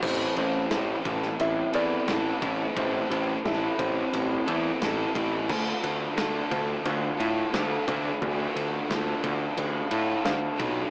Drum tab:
CC |x---------------|----------------|x---------------|----------------|
RD |--x-x-x-x-x-x-x-|x-x-x-x-x-x-x-x-|--x-x-x-x-x-x-x-|x-x-x-x-x-x-x-x-|
SD |----o--o----o---|----o-------o---|----o-------o---|----o-------o---|
BD |o-----o-------o-|o-----o-------o-|o-----o-------o-|o-----o-------o-|